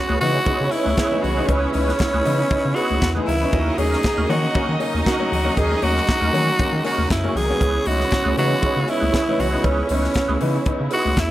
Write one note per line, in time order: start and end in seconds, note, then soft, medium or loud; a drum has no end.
0.00 11.31 C#3 medium
0.00 3.49 G#3 medium
0.00 3.49 B3 medium
0.00 2.93 C#4 loud
0.00 3.49 E4 loud
0.00 0.20 F#4 loud
0.00 2.93 C#5 loud
0.09 0.17 C#2 loud
0.09 0.19 E4 medium
0.09 0.20 G#4 medium
0.09 0.20 B4 medium
0.09 muted conga soft
0.09 high conga medium
0.21 0.39 C#3 medium
0.21 0.35 E3 medium
0.21 0.35 B3 medium
0.21 0.35 D#4 medium
0.21 0.73 F#4 loud
0.21 muted clean electric guitar stroke soft
0.21 open hi-hat medium
0.21 low conga medium
0.46 0.52 C#3 medium
0.46 0.60 B3 medium
0.46 0.60 D#4 medium
0.46 0.66 E4 medium
0.46 0.60 G#4 medium
0.46 0.59 B4 loud
0.46 kick loud
0.46 closed hi-hat medium
0.46 muted conga soft
0.60 0.68 C#3 medium
0.60 0.72 C#3 medium
0.60 muted clean electric guitar stroke soft
0.71 0.86 B3 medium
0.71 0.86 D#4 medium
0.71 1.24 E4 loud
0.71 muted clean electric guitar stroke soft
0.71 open hi-hat medium
0.85 0.94 C#2 loud
0.85 0.96 E4 medium
0.85 0.96 G#4 medium
0.85 0.97 B4 medium
0.85 high conga medium
0.97 1.17 E4 medium
0.97 1.10 G#4 medium
0.97 1.09 B4 medium
0.97 kick loud
0.97 snare loud
0.97 closed hi-hat medium
0.97 muted conga soft
1.10 1.23 E3 medium
1.10 1.23 B3 medium
1.10 1.23 D#4 medium
1.10 muted clean electric guitar stroke soft
1.10 muted conga soft
1.10 high conga medium
1.22 1.41 C2 medium
1.22 1.36 C#3 medium
1.22 1.49 F#4 medium
1.22 muted clean electric guitar stroke soft
1.22 open hi-hat medium
1.22 low conga medium
1.37 1.49 E3 medium
1.37 1.49 B3 medium
1.37 1.49 D#4 loud
1.37 1.48 E4 medium
1.37 1.48 G#4 medium
1.37 1.49 B4 medium
1.47 1.66 C#2 loud
1.47 1.62 C#3 medium
1.47 1.72 C#4 medium
1.47 1.72 E4 medium
1.47 1.72 G#4 medium
1.47 1.73 B4 medium
1.47 kick loud
1.47 closed hi-hat medium
1.63 1.67 B3 soft
1.63 1.67 D#4 soft
1.73 1.92 C#2 loud
1.73 1.88 E3 medium
1.73 1.88 B3 medium
1.73 2.76 C#4 loud
1.73 1.88 D#4 medium
1.73 muted clean electric guitar stroke soft
1.73 open hi-hat medium
1.73 high conga medium
1.88 1.99 E4 medium
1.88 1.99 G#4 medium
1.88 1.99 B4 medium
1.88 snare soft
1.99 muted clean electric guitar stroke soft
1.99 kick loud
1.99 snare loud
1.99 closed hi-hat medium
1.99 muted conga soft
2.13 2.22 C#2 loud
2.13 2.24 E4 medium
2.13 2.24 G#4 medium
2.13 2.25 B4 medium
2.13 high conga medium
2.25 2.43 C#3 loud
2.25 2.38 E3 medium
2.25 2.39 B3 medium
2.25 2.39 D#4 loud
2.25 muted clean electric guitar stroke medium
2.25 open hi-hat medium
2.25 low conga medium
2.38 muted clean electric guitar stroke soft
2.51 2.56 C#3 soft
2.51 2.64 B3 medium
2.51 2.64 D#4 medium
2.51 muted clean electric guitar stroke soft
2.51 kick loud
2.51 closed hi-hat medium
2.51 muted conga soft
2.64 2.76 C#3 medium
2.64 2.73 C#3 loud
2.64 muted clean electric guitar stroke medium
2.64 muted conga soft
2.75 2.90 B3 medium
2.75 2.90 D#4 medium
2.75 2.89 E4 loud
2.75 3.11 F#4 loud
2.75 2.88 G#4 loud
2.75 2.87 B4 loud
2.75 open hi-hat medium
2.88 2.99 C#2 loud
2.88 3.01 B4 medium
2.88 high conga medium
3.01 3.20 E2 medium
3.01 3.10 E4 medium
3.01 muted clean electric guitar stroke soft
3.01 kick loud
3.01 snare loud
3.01 closed hi-hat medium
3.01 muted conga soft
3.10 3.19 F#4 medium
3.15 3.28 E3 medium
3.15 3.27 G#3 medium
3.15 3.28 B3 medium
3.15 3.28 D#4 medium
3.15 3.26 E4 medium
3.15 3.27 G#4 medium
3.15 3.27 B4 medium
3.15 muted conga soft
3.15 high conga medium
3.27 3.45 D2 medium
3.27 3.41 C#3 medium
3.27 3.35 A#3 medium
3.27 3.79 E4 loud
3.27 3.35 A#4 medium
3.27 muted clean electric guitar stroke soft
3.27 open hi-hat medium
3.27 low conga medium
3.35 3.44 B3 medium
3.35 3.44 B4 loud
3.41 3.53 E3 medium
3.41 3.53 B3 medium
3.41 3.52 C#4 medium
3.41 3.54 D#4 medium
3.41 3.53 C#5 medium
3.41 muted clean electric guitar stroke soft
3.52 3.71 D#2 loud
3.52 3.67 D#3 medium
3.52 7.57 F#3 medium
3.52 5.55 A#3 medium
3.52 3.76 C#4 medium
3.52 7.18 D#4 loud
3.52 7.57 D#4 medium
3.52 3.76 F#4 medium
3.52 3.77 A#4 medium
3.52 7.19 D#5 loud
3.52 kick loud
3.52 closed hi-hat medium
3.52 muted conga soft
3.66 3.71 A#3 soft
3.66 3.71 C#4 soft
3.78 3.96 D#2 loud
3.78 3.92 F#3 medium
3.78 3.92 A#3 medium
3.78 3.92 C#4 medium
3.78 4.31 G#4 loud
3.78 muted clean electric guitar stroke medium
3.78 open hi-hat medium
3.78 high conga soft
3.91 4.03 C#4 medium
3.91 4.03 F#4 medium
3.91 4.04 A#4 medium
3.91 snare soft
4.03 kick loud
4.03 snare loud
4.03 closed hi-hat medium
4.17 4.26 D#2 loud
4.17 4.29 C#4 medium
4.17 4.29 F#4 medium
4.17 4.29 A#4 loud
4.17 high conga medium
4.29 4.47 D#3 loud
4.29 4.43 F#3 medium
4.29 4.43 A#3 medium
4.29 4.43 C#4 loud
4.29 4.79 F#4 medium
4.29 open hi-hat medium
4.29 low conga medium
4.54 4.61 D#3 medium
4.54 4.68 A#3 medium
4.54 4.75 C#4 medium
4.54 4.69 C#4 medium
4.54 4.68 F#4 medium
4.54 4.67 A#4 medium
4.54 kick loud
4.54 closed hi-hat medium
4.68 4.77 D#3 loud
4.68 4.81 D#3 medium
4.68 muted clean electric guitar stroke medium
4.68 muted conga soft
4.79 4.93 A#3 medium
4.79 4.94 C#4 medium
4.79 muted clean electric guitar stroke soft
4.79 open hi-hat medium
4.93 5.02 D#2 loud
4.93 5.04 C#4 medium
4.93 5.05 F#4 medium
4.93 5.05 A#4 medium
4.93 high conga medium
5.05 5.25 C#4 medium
5.05 5.19 F#4 medium
5.05 5.60 F#4 loud
5.05 5.19 A#4 medium
5.05 kick loud
5.05 snare loud
5.05 closed hi-hat medium
5.19 5.31 F#3 medium
5.19 5.32 A#3 medium
5.19 5.32 C#4 medium
5.19 muted clean electric guitar stroke soft
5.19 high conga medium
5.32 5.50 D2 medium
5.32 5.45 D#3 medium
5.32 muted clean electric guitar stroke soft
5.32 open hi-hat medium
5.32 low conga medium
5.44 5.57 F#3 medium
5.44 5.57 A#3 medium
5.44 5.57 C#4 medium
5.44 5.55 C#4 medium
5.44 5.56 F#4 medium
5.44 5.56 A#4 medium
5.56 5.75 D#2 loud
5.56 5.71 D#3 medium
5.56 11.31 G#3 medium
5.56 5.80 C#4 medium
5.56 5.81 F#4 medium
5.56 5.85 G#4 loud
5.56 5.81 A#4 medium
5.56 kick loud
5.56 closed hi-hat medium
5.71 5.76 A#3 soft
5.71 5.76 C#4 soft
5.71 muted conga soft
5.82 6.00 D#2 loud
5.82 5.96 F#3 medium
5.82 5.96 A#3 medium
5.82 5.96 C#4 medium
5.82 6.85 F#4 loud
5.82 muted clean electric guitar stroke soft
5.82 open hi-hat medium
5.82 high conga medium
5.95 6.06 C#4 medium
5.95 6.06 F#4 medium
5.95 6.07 A#4 medium
5.95 snare soft
6.07 muted clean electric guitar stroke soft
6.07 kick loud
6.07 snare loud
6.07 closed hi-hat medium
6.20 6.30 D#2 loud
6.20 6.32 C#4 medium
6.20 6.32 F#4 medium
6.20 6.33 A#4 loud
6.20 high conga loud
6.33 6.51 D#3 loud
6.33 6.47 F#3 medium
6.33 6.47 A#3 medium
6.33 6.47 C#4 loud
6.33 open hi-hat medium
6.33 low conga medium
6.58 6.65 D#3 soft
6.58 6.73 A#3 medium
6.58 6.73 C#4 medium
6.58 muted clean electric guitar stroke soft
6.58 kick loud
6.58 closed hi-hat medium
6.58 muted conga soft
6.72 6.81 D#3 loud
6.72 6.85 D#3 medium
6.72 muted conga soft
6.83 6.98 A#3 medium
6.83 6.97 C#4 medium
6.83 6.98 C#4 medium
6.83 6.97 F#4 medium
6.83 7.09 F#4 loud
6.83 6.96 A#4 loud
6.83 open hi-hat medium
6.97 7.06 D#2 loud
6.97 7.08 C#4 medium
6.97 7.09 F#4 medium
6.97 7.09 A#4 medium
6.97 high conga medium
7.09 7.28 F#2 medium
7.09 7.38 E4 medium
7.09 muted clean electric guitar stroke soft
7.09 kick loud
7.09 snare loud
7.09 closed hi-hat medium
7.09 muted conga soft
7.24 7.36 F#3 medium
7.24 7.36 A#3 medium
7.24 7.36 C#4 medium
7.24 7.33 C#4 medium
7.24 7.34 F#4 medium
7.24 7.35 F#4 medium
7.24 7.35 A#4 medium
7.24 high conga medium
7.35 7.53 C2 medium
7.35 7.49 D#3 medium
7.35 7.44 G#3 medium
7.35 7.44 G#4 medium
7.35 7.88 G#4 loud
7.35 muted clean electric guitar stroke medium
7.35 open hi-hat medium
7.35 low conga medium
7.44 7.52 A#3 medium
7.44 7.53 A#4 medium
7.49 7.61 F#3 medium
7.49 7.61 A#3 medium
7.49 7.61 C#4 medium
7.49 muted clean electric guitar stroke soft
7.53 7.61 B3 medium
7.53 7.61 B4 medium
7.60 7.79 C#2 loud
7.60 7.74 C#3 medium
7.60 11.31 B3 medium
7.60 11.31 C#4 medium
7.60 7.84 E4 medium
7.60 11.31 E4 medium
7.60 7.85 G#4 medium
7.60 7.85 B4 medium
7.60 11.31 C#5 medium
7.60 kick loud
7.60 closed hi-hat medium
7.76 7.80 B3 soft
7.76 7.80 D#4 soft
7.85 8.04 C#2 loud
7.85 8.00 E3 medium
7.85 8.00 B3 medium
7.85 8.00 D#4 medium
7.85 8.37 F#4 loud
7.85 muted clean electric guitar stroke soft
7.85 open hi-hat medium
7.85 high conga medium
7.99 8.09 E4 soft
7.99 8.10 G#4 medium
7.99 8.11 B4 medium
7.99 snare soft
8.11 muted clean electric guitar stroke soft
8.11 kick loud
8.11 snare loud
8.11 closed hi-hat medium
8.24 8.33 C#2 loud
8.24 8.35 E4 medium
8.24 8.36 G#4 medium
8.24 8.36 B4 loud
8.24 muted conga soft
8.24 high conga loud
8.36 8.55 C#3 loud
8.36 8.51 E3 medium
8.36 8.51 B3 medium
8.36 8.51 D#4 medium
8.36 8.91 F#4 loud
8.36 muted clean electric guitar stroke medium
8.36 open hi-hat medium
8.36 low conga medium
8.49 muted clean electric guitar stroke soft
8.61 8.68 C#3 medium
8.61 8.76 B3 medium
8.61 8.77 D#4 medium
8.61 8.82 E4 medium
8.61 8.75 G#4 medium
8.61 8.74 B4 medium
8.61 kick loud
8.61 closed hi-hat medium
8.75 8.88 C#3 medium
8.75 8.84 C#3 loud
8.75 muted clean electric guitar stroke soft
8.75 muted conga soft
8.87 9.02 B3 medium
8.87 9.02 D#4 medium
8.87 9.41 E4 loud
8.87 muted clean electric guitar stroke soft
8.87 open hi-hat medium
9.00 9.10 C#2 loud
9.00 9.11 E4 soft
9.00 9.11 G#4 medium
9.00 9.12 B4 medium
9.00 high conga medium
9.12 9.33 E4 medium
9.12 9.26 G#4 medium
9.12 9.25 B4 medium
9.12 kick loud
9.12 snare loud
9.12 closed hi-hat medium
9.26 9.39 E3 medium
9.26 9.40 B3 medium
9.26 9.40 D#4 medium
9.26 muted clean electric guitar stroke soft
9.26 high conga medium
9.38 9.57 C2 medium
9.38 9.53 C#3 medium
9.38 9.67 F#4 medium
9.38 muted clean electric guitar stroke soft
9.38 open hi-hat medium
9.38 low conga medium
9.51 9.64 E3 medium
9.51 9.64 B3 medium
9.51 9.65 D#4 medium
9.51 9.62 E4 medium
9.51 9.62 G#4 medium
9.51 9.63 B4 medium
9.63 9.82 C#2 loud
9.63 9.78 C#3 medium
9.63 9.90 C#4 medium
9.63 9.87 E4 medium
9.63 9.87 G#4 medium
9.63 9.88 B4 loud
9.63 kick loud
9.63 closed hi-hat medium
9.63 muted conga soft
9.78 9.83 B3 soft
9.78 9.83 D#4 soft
9.78 muted conga soft
9.89 10.08 C#2 loud
9.89 10.04 E3 medium
9.89 10.04 B3 medium
9.89 10.61 C#4 medium
9.89 10.04 D#4 medium
9.89 muted clean electric guitar stroke soft
9.89 open hi-hat medium
9.89 high conga medium
10.02 10.14 E4 soft
10.02 10.14 G#4 medium
10.02 10.15 B4 medium
10.02 snare soft
10.14 muted clean electric guitar stroke soft
10.14 kick loud
10.14 snare loud
10.14 closed hi-hat medium
10.14 muted conga soft
10.28 10.37 C#2 loud
10.28 10.39 E4 medium
10.28 10.39 G#4 medium
10.28 10.39 B4 loud
10.28 muted conga soft
10.28 high conga medium
10.40 10.59 C#3 loud
10.40 10.54 E3 loud
10.40 10.54 B3 medium
10.40 10.55 D#4 loud
10.40 muted clean electric guitar stroke soft
10.40 open hi-hat medium
10.40 low conga loud
10.54 muted clean electric guitar stroke soft
10.65 10.72 C#3 soft
10.65 10.80 B3 medium
10.65 10.80 D#4 medium
10.65 muted clean electric guitar stroke soft
10.65 kick loud
10.65 closed hi-hat medium
10.65 muted conga soft
10.79 10.88 C#3 loud
10.79 10.92 C#3 medium
10.79 muted clean electric guitar stroke medium
10.90 11.06 B3 medium
10.90 11.06 D#4 medium
10.90 11.04 E4 loud
10.90 11.21 F#4 loud
10.90 11.03 G#4 medium
10.90 11.03 B4 loud
10.90 open hi-hat medium
11.04 11.14 C#2 loud
11.04 11.15 E4 soft
11.04 11.15 G#4 medium
11.04 11.16 B4 medium
11.04 high conga medium
11.16 11.31 E2 medium
11.16 11.31 E4 loud
11.16 muted clean electric guitar stroke soft
11.16 kick medium
11.16 snare loud
11.16 closed hi-hat medium